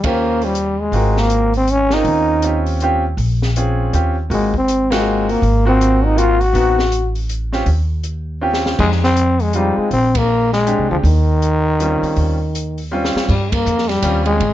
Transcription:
0.00 0.88 D#2 medium
0.00 kick medium
0.00 ride medium
0.04 0.46 A#3 medium
0.04 0.53 C#4 medium
0.04 0.53 F4 soft
0.04 0.53 G4 soft
0.04 0.53 C5 medium
0.42 0.82 G3 medium
0.42 open hi-hat soft
0.55 closed hi-hat soft
0.81 1.21 G#3 medium
0.92 2.01 G#1 medium
0.92 1.49 C4 soft
0.92 1.49 F4 soft
0.92 1.50 F#4 soft
0.92 1.50 A#4 medium
0.92 open hi-hat soft
1.17 1.55 A#3 medium
1.17 snare soft
1.30 closed hi-hat soft
1.54 1.72 C4 medium
1.54 open hi-hat soft
1.67 1.95 C#4 medium
1.67 closed hi-hat soft
1.90 2.40 C4 medium
1.90 2.40 C#4 medium
1.90 2.67 D#4 medium
1.90 2.41 F4 medium
1.90 2.41 A#4 medium
1.90 snare soft
2.04 3.13 D#2 medium
2.04 open hi-hat soft
2.42 2.79 C4 medium
2.42 2.79 C#4 soft
2.42 2.79 F4 soft
2.42 2.80 G4 medium
2.42 closed hi-hat medium
2.66 open hi-hat soft
2.80 3.02 C4 medium
2.80 3.03 C#4 medium
2.80 3.03 F4 medium
2.80 3.03 G4 medium
2.80 closed hi-hat soft
3.17 3.88 A#1 medium
3.17 open hi-hat soft
3.42 snare soft
3.56 3.92 C4 medium
3.56 3.92 C#4 soft
3.56 3.92 F4 soft
3.56 3.92 G#4 medium
3.56 closed hi-hat soft
3.93 4.27 D#2 medium
3.93 4.14 C4 medium
3.93 4.14 C#4 medium
3.93 4.14 F4 soft
3.93 4.15 G4 medium
3.93 closed hi-hat soft
4.30 5.38 G#1 medium
4.30 4.53 G#3 medium
4.30 4.51 A#3 soft
4.30 4.51 C4 soft
4.30 4.51 F4 soft
4.30 4.51 F#4 medium
4.30 open hi-hat soft
4.54 4.94 C4 medium
4.54 kick soft
4.68 closed hi-hat medium
4.90 5.32 G#3 medium
4.90 5.39 A#3 medium
4.90 5.39 C4 medium
4.90 5.40 F4 medium
4.90 5.40 F#4 medium
4.90 snare medium
4.90 ride medium
5.29 5.67 A#3 medium
5.29 open hi-hat soft
5.42 6.50 G#1 medium
5.42 open hi-hat soft
5.65 6.14 A#3 medium
5.65 6.14 C4 medium
5.65 6.07 C4 medium
5.65 6.14 F4 medium
5.65 6.15 F#4 medium
5.81 closed hi-hat medium
6.05 6.19 D#4 medium
6.16 6.38 A#3 medium
6.16 6.38 C4 soft
6.16 6.38 F4 medium
6.16 6.42 F4 medium
6.16 6.39 F#4 medium
6.16 closed hi-hat soft
6.40 7.15 F#4 medium
6.40 open hi-hat soft
6.53 7.62 A1 medium
6.53 6.75 B3 medium
6.53 6.76 C4 soft
6.53 6.76 D#4 medium
6.53 6.76 F#4 medium
6.53 open hi-hat soft
6.79 snare soft
6.92 closed hi-hat medium
7.15 open hi-hat soft
7.29 closed hi-hat soft
7.52 7.65 C4 medium
7.52 7.65 C#4 medium
7.52 7.66 F4 medium
7.52 7.66 G4 medium
7.52 snare soft
7.66 8.75 D#2 medium
7.66 open hi-hat soft
8.04 closed hi-hat soft
8.41 8.78 C4 medium
8.41 8.79 C#4 medium
8.41 8.79 F4 medium
8.41 8.78 G4 medium
8.53 snare medium
8.66 snare medium
8.79 9.73 F2 medium
8.79 9.00 G#3 soft
8.79 8.90 G#3 medium
8.79 9.00 C4 soft
8.79 9.01 D#4 soft
8.79 9.01 G4 medium
8.79 kick medium
8.79 crash medium
8.92 snare soft
9.04 9.43 C4 medium
9.04 snare soft
9.16 closed hi-hat soft
9.39 9.57 G#3 medium
9.39 open hi-hat soft
9.53 9.80 G3 medium
9.53 9.91 G#3 medium
9.53 9.91 C4 medium
9.53 9.91 D#4 medium
9.53 9.92 F4 medium
9.53 closed hi-hat soft
9.77 9.92 G#3 medium
9.77 muted upright bass stroke soft
9.91 10.74 A#1 medium
9.91 10.19 C4 medium
9.91 open hi-hat soft
10.15 10.52 A#3 medium
10.15 kick medium
10.15 ride medium
10.53 10.87 G#3 medium
10.53 snare soft
10.65 11.03 G#3 medium
10.65 11.03 C4 soft
10.65 11.04 D4 medium
10.65 11.04 G4 medium
10.65 closed hi-hat soft
10.79 10.90 C2 medium
10.91 11.03 D2 medium
10.91 10.97 F3 medium
11.03 11.98 D#2 medium
11.03 12.87 D#3 medium
11.03 open hi-hat soft
11.42 closed hi-hat soft
11.79 12.35 G3 medium
11.79 12.36 C4 soft
11.79 12.36 C#4 soft
11.79 12.36 F4 medium
11.79 closed hi-hat soft
12.02 muted upright bass stroke soft
12.02 open hi-hat soft
12.16 13.11 D#2 medium
12.16 open hi-hat soft
12.55 closed hi-hat soft
12.78 open hi-hat soft
12.91 13.28 G3 medium
12.91 13.29 C4 medium
12.91 13.29 C#4 medium
12.91 13.29 F4 medium
13.05 snare medium
13.15 muted upright bass stroke soft
13.15 snare medium
13.28 13.65 G2 medium
13.28 13.54 G3 medium
13.28 kick medium
13.28 crash medium
13.52 13.90 A#3 medium
13.52 kick medium
13.52 ride medium
13.66 14.02 F2 medium
13.66 hi-hat pedal medium
13.78 snare soft
13.88 14.25 G3 medium
13.88 snare soft
13.88 ride soft
14.02 14.39 D#2 medium
14.02 14.40 G3 medium
14.02 14.40 C4 soft
14.02 14.41 C#4 soft
14.02 14.41 F4 medium
14.02 hi-hat pedal medium
14.02 ride medium
14.26 14.53 G#3 medium
14.26 ride soft
14.40 14.53 G#1 medium
14.40 ride soft

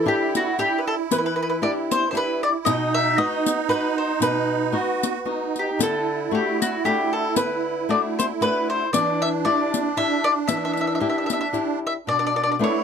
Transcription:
0.00 2.75 E4 medium
0.06 0.48 D4 medium
0.06 0.48 E4 soft
0.06 0.48 G4 medium
0.06 0.34 G4 medium
0.35 0.59 F#4 medium
0.35 riq soft
0.58 1.00 D4 soft
0.58 1.01 E4 soft
0.58 1.01 G4 soft
0.58 0.79 G4 medium
0.58 riq soft
0.78 0.87 B4 medium
0.87 0.94 A4 medium
1.11 1.61 E3 soft
1.11 1.17 B4 medium
1.11 riq medium
1.18 1.25 B4 medium
1.26 1.34 B4 medium
1.36 1.41 B4 medium
1.43 1.48 B4 medium
1.50 1.56 B4 medium
1.62 2.04 D4 soft
1.62 2.04 E4 soft
1.62 2.04 G4 medium
1.62 1.71 D5 medium
1.91 2.08 C5 medium
1.91 riq soft
2.11 2.55 D4 soft
2.11 2.55 E4 soft
2.11 2.55 G4 soft
2.11 2.16 C5 medium
2.15 2.42 B4 loud
2.15 riq soft
2.43 2.49 D5 medium
2.65 3.16 B2 medium
2.65 4.80 D#4 loud
2.65 2.92 D#5 medium
2.65 riq medium
2.94 3.18 E5 loud
3.18 3.59 B3 medium
3.18 3.59 D#4 medium
3.18 3.60 F#4 medium
3.18 3.69 D#5 loud
3.46 riq medium
3.68 4.11 B3 soft
3.68 4.11 D#4 soft
3.68 4.11 F#4 soft
3.68 3.98 B4 loud
3.68 riq soft
3.98 4.20 C5 medium
4.20 4.72 B2 medium
4.20 5.23 B4 medium
4.20 riq medium
4.72 5.15 B3 medium
4.72 5.15 D#4 soft
4.72 5.16 F#4 medium
4.72 5.28 F#4 loud
5.03 riq soft
5.25 5.68 B3 soft
5.25 5.69 D#4 soft
5.25 5.82 D#4 medium
5.25 5.69 F#4 soft
5.56 5.80 G4 medium
5.56 riq soft
5.79 6.31 D3 medium
5.79 8.89 E4 medium
5.79 6.30 A4 medium
5.79 riq medium
6.31 6.74 A3 medium
6.31 6.74 D4 soft
6.31 6.74 F#4 medium
6.31 6.60 G4 medium
6.62 6.84 F#4 medium
6.62 riq medium
6.85 7.27 A3 soft
6.85 7.27 D4 soft
6.85 7.27 F#4 soft
6.85 7.12 G4 medium
6.85 riq soft
7.13 7.35 A4 medium
7.36 7.88 D3 soft
7.36 7.86 B4 medium
7.36 riq medium
7.89 8.31 A3 medium
7.89 8.31 D4 medium
7.89 8.32 F#4 medium
7.89 7.98 D5 medium
8.19 8.25 C5 medium
8.19 riq soft
8.41 8.83 A3 soft
8.41 8.83 D4 soft
8.41 8.83 F#4 soft
8.41 8.68 B4 loud
8.41 riq soft
8.70 8.92 C5 medium
8.93 9.44 E3 soft
8.93 11.79 D4 medium
8.93 9.20 D5 medium
8.93 riq medium
9.22 9.28 E5 loud
9.45 9.86 D4 medium
9.45 9.87 E4 medium
9.45 9.87 G4 medium
9.45 9.98 D5 medium
9.74 riq soft
9.97 10.38 D4 soft
9.97 10.38 E4 soft
9.97 10.39 G4 soft
9.97 10.23 E5 loud
9.97 riq soft
10.24 10.31 D5 loud
10.48 10.99 E3 soft
10.48 10.56 E5 medium
10.48 riq medium
10.57 10.64 E5 medium
10.65 10.72 E5 medium
10.73 10.80 E5 medium
10.73 riq soft
10.81 10.86 E5 medium
10.87 10.94 E5 medium
10.95 10.99 E5 medium
11.00 11.43 D4 medium
11.00 11.43 E4 soft
11.00 11.44 G4 medium
11.00 11.08 E5 soft
11.09 11.17 E5 medium
11.18 11.25 E5 soft
11.26 11.32 E5 medium
11.26 riq soft
11.33 11.39 E5 medium
11.41 11.47 E5 medium
11.53 11.96 D4 soft
11.53 11.96 E4 soft
11.53 11.96 G4 soft
11.53 riq soft
11.87 11.93 E5 medium
12.07 12.59 B2 medium
12.07 12.56 D4 medium
12.07 12.16 D5 medium
12.19 12.25 D5 medium
12.27 12.34 D5 medium
12.36 12.42 D5 medium
12.43 12.49 D5 medium
12.52 12.56 D5 medium
12.59 12.84 A3 medium
12.59 12.84 B3 soft
12.59 12.84 D4 medium
12.59 12.84 E4 medium
12.64 12.84 C#5 medium

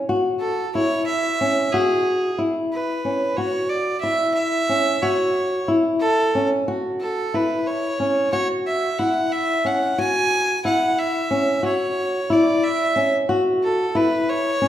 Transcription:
0.09 0.65 F#4 medium
0.40 0.71 A4 medium
0.75 1.31 E4 medium
0.75 1.05 C#5 medium
1.06 1.73 E5 medium
1.41 1.68 C#4 medium
1.72 2.29 F#4 medium
1.72 2.38 G#4 medium
2.38 2.95 E4 medium
2.72 3.38 B4 medium
3.05 3.33 C#4 medium
3.37 3.94 F#4 medium
3.37 3.71 C#5 medium
3.70 4.00 D5 medium
4.00 4.60 E4 medium
4.00 4.32 E5 medium
4.34 5.03 E5 medium
4.69 4.98 C#4 medium
5.02 5.59 F#4 medium
5.02 5.68 C#5 medium
5.68 6.25 E4 medium
6.00 6.47 A4 medium
6.35 6.63 C#4 medium
6.68 7.24 F#4 medium
7.01 7.36 A4 medium
7.34 7.90 E4 medium
7.34 7.68 B4 medium
7.67 8.32 C#5 medium
8.00 8.28 C#4 medium
8.32 8.89 F#4 medium
8.32 8.47 C#5 medium
8.67 9.00 E5 medium
8.99 9.55 E4 medium
8.99 9.33 F#5 medium
9.32 9.68 E5 medium
9.65 9.93 C#4 medium
9.65 9.99 F#5 medium
9.98 10.55 F#4 medium
9.98 10.61 G#5 medium
10.65 11.21 E4 medium
10.65 11.00 F#5 medium
10.98 11.64 E5 medium
11.31 11.59 C#4 medium
11.63 12.20 F#4 medium
11.63 12.33 C#5 medium
12.30 12.86 E4 medium
12.30 12.65 D5 medium
12.63 13.13 E5 medium
12.96 13.24 C#4 medium
13.29 13.85 F#4 medium
13.63 13.98 A4 medium
13.95 14.51 E4 medium
13.95 14.30 B4 medium
14.29 14.68 C#5 medium
14.62 14.68 C#4 medium

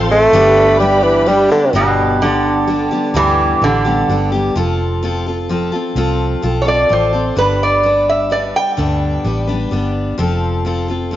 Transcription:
0.00 0.26 A1 medium
0.00 0.10 C4 medium
0.00 0.30 F4 medium
0.00 0.31 A4 medium
0.00 0.33 A4 medium
0.00 0.32 C5 medium
0.00 0.33 C5 medium
0.00 0.33 F5 medium
0.00 0.33 C6 medium
0.09 0.79 A3 loud
0.09 0.34 C4 soft
0.09 0.34 F4 soft
0.09 0.33 A4 soft
0.32 1.47 G1 medium
0.32 0.80 G2 medium
0.32 0.80 D3 medium
0.32 0.79 G3 medium
0.32 0.80 B3 loud
0.32 1.71 D4 medium
0.32 0.81 D4 medium
0.32 1.71 G4 medium
0.32 1.73 G4 medium
0.32 0.81 G4 medium
0.32 1.73 B4 medium
0.32 1.72 B4 medium
0.32 1.73 D5 medium
0.32 1.73 B5 medium
0.80 1.05 G3 medium
0.80 1.25 G3 medium
0.80 1.27 B3 medium
0.80 1.27 D4 medium
0.80 1.28 G4 medium
1.04 1.30 E3 loud
1.27 1.50 G3 medium
1.27 1.51 G3 loud
1.27 1.51 B3 medium
1.27 1.50 D4 medium
1.27 1.49 G4 medium
1.50 1.74 D3 loud
1.50 1.73 G3 soft
1.50 1.74 B3 soft
1.50 1.74 D4 medium
1.50 1.74 G4 soft
1.73 2.88 G1 medium
1.73 2.21 G2 medium
1.73 2.23 B2 medium
1.73 2.21 D3 medium
1.73 2.20 G3 medium
1.73 2.21 B3 medium
1.73 2.22 D4 medium
1.73 2.22 G4 medium
2.21 3.18 D3 medium
2.21 2.66 G3 medium
2.21 2.67 B3 medium
2.21 2.68 D4 medium
2.21 2.69 G4 medium
2.67 2.91 G3 medium
2.67 2.91 B3 medium
2.67 2.91 D4 medium
2.67 2.90 G4 medium
2.91 3.14 G3 soft
2.91 3.14 B3 soft
2.91 3.14 D4 soft
2.91 3.15 G4 medium
3.14 3.53 D2 medium
3.14 3.61 G2 medium
3.14 3.62 D3 medium
3.14 3.64 E3 loud
3.14 3.60 G3 medium
3.14 3.61 B3 medium
3.14 3.62 D4 medium
3.14 3.62 G4 medium
3.61 4.01 A1 medium
3.61 4.29 D3 medium
3.61 3.85 G3 medium
3.61 3.85 B3 medium
3.61 3.85 D4 medium
3.61 3.83 G4 medium
3.85 4.08 G3 soft
3.85 4.09 B3 soft
3.85 4.09 D4 soft
3.85 4.08 G4 soft
4.09 4.49 G1 medium
4.09 4.33 G3 medium
4.09 4.33 B3 medium
4.09 4.31 D4 medium
4.09 4.30 G4 medium
4.32 4.55 G3 soft
4.32 4.56 B3 soft
4.32 4.56 D4 medium
4.32 4.55 G4 medium
4.55 5.70 F1 medium
4.55 5.01 F3 medium
4.55 5.02 C4 medium
4.55 5.03 F4 medium
4.55 5.04 A4 medium
5.03 5.26 F3 medium
5.03 5.27 C4 medium
5.03 5.26 F4 medium
5.03 5.25 A4 medium
5.26 5.49 C4 soft
5.26 5.50 F4 soft
5.26 5.50 A4 medium
5.49 5.73 F3 medium
5.49 5.73 C4 medium
5.49 5.72 F4 medium
5.49 5.71 A4 medium
5.72 5.95 C4 soft
5.72 5.96 F4 soft
5.72 5.96 A4 soft
5.95 6.34 C2 medium
5.95 6.41 F3 medium
5.95 6.42 C4 medium
5.95 6.43 F4 medium
5.95 6.44 A4 medium
6.42 6.83 B1 medium
6.42 6.66 F3 medium
6.42 6.66 C4 medium
6.42 6.65 F4 medium
6.42 6.63 A4 medium
6.62 6.89 A4 medium
6.62 6.67 C#5 medium
6.67 6.89 C4 soft
6.67 6.90 F4 soft
6.67 6.92 D5 medium
6.89 7.30 A1 medium
6.89 7.13 F3 medium
6.89 7.14 C4 medium
6.89 7.13 F4 medium
6.89 7.11 A4 medium
6.89 7.38 C5 medium
7.13 7.37 C4 soft
7.13 7.37 F4 soft
7.13 7.37 A4 medium
7.36 8.51 G1 medium
7.36 7.83 G2 medium
7.36 7.84 D3 medium
7.36 7.82 G3 medium
7.36 7.83 B3 medium
7.36 7.84 D4 medium
7.36 7.84 B4 medium
7.36 7.62 B4 medium
7.63 8.09 D5 medium
7.83 8.29 G3 medium
7.83 8.30 B3 soft
7.83 8.31 D4 medium
7.83 8.32 B4 medium
8.09 8.33 E5 medium
8.30 8.76 G3 soft
8.30 8.77 B3 medium
8.30 8.77 D4 medium
8.30 8.78 B4 medium
8.30 8.38 D5 medium
8.56 9.92 G5 medium
8.77 9.16 D2 medium
8.77 9.25 G2 medium
8.77 9.25 D3 medium
8.77 9.23 G3 medium
8.77 9.24 B3 medium
8.77 9.25 D4 medium
8.77 9.26 B4 medium
9.24 9.65 A1 medium
9.24 9.48 G3 medium
9.24 9.48 B3 medium
9.24 9.47 D4 medium
9.24 9.46 B4 medium
9.47 9.70 G3 soft
9.47 9.71 B3 soft
9.47 9.72 D4 medium
9.47 9.72 B4 medium
9.71 10.12 G1 medium
9.71 10.17 G3 medium
9.71 10.18 B3 medium
9.71 10.19 D4 medium
9.71 10.20 B4 medium
10.18 11.16 F1 medium
10.18 10.64 F3 medium
10.18 10.65 C4 medium
10.18 10.65 F4 medium
10.18 10.66 A4 medium
10.65 10.89 F3 medium
10.65 10.90 C4 medium
10.65 10.88 F4 medium
10.65 10.87 A4 medium
10.88 11.11 C4 soft
10.88 11.12 F4 soft
10.88 11.12 A4 soft
11.11 11.16 F3 medium
11.11 11.16 C4 medium
11.11 11.16 F4 medium

